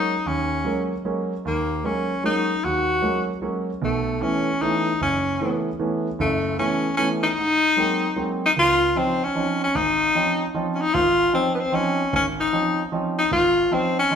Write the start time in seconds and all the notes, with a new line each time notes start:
Already playing: F#3 G#3 A#3 C#4 D#4
0.26 D#2 C#4
0.65 F#3 G#3 A#3 C#4
1.05 F#3 G#3 A#3 C#4
1.45 D#2 A#3
1.84 F#3 G#3 A#3 C#4
2.24 F#3 G#3 A#3 C#4 D#4
2.64 D#2 F#4
3.02 F#3 G#3 A#3 C#4
3.42 F#3 G#3 A#3 C#4
3.82 B1 B2 A3
4.21 E3 A3 B3 C#4
4.62 E3 A3 B3 C#4 D#4
5.01 F#1 C#4
5.41 E3 A3 B3 C#4
5.80 E3 A3 B3 C#4
6.19 F#1 F#2 A3
6.59 E3 A3 B3 C#4
6.97 E3 A3 B3 C#4
7.23 D#4
7.38 G#2
7.77 F#3 G#3 A#3 C4
8.16 F#3 G#3 A#3 C4
8.46 D#4
8.56 C#2 F4
8.96 F3 C4 C#4 D#4
9.24 C#4
9.35 F3 C4 C#4 D#4
9.64 C#4
9.75 G#1 D#4
10.15 F3 C4 C#4 D#4
10.54 F3 C4 C#4 D#4
10.74 C#4
10.81 D#4
10.94 G#1 F4
11.33 F3 C4 C#4 D#4
11.55 B3
11.60 C4
11.72 F3 C4 C#4 D#4
12.13 G#1 C#4
12.40 D#4
12.53 F3 C4 C#4 D#4
12.92 F3 C4 C#4 D#4
13.18 D#4
13.31 G#1 F4
13.71 F3 C4 C#4 D#4
13.99 C#4
14.11 F3 C4 C#4 D#4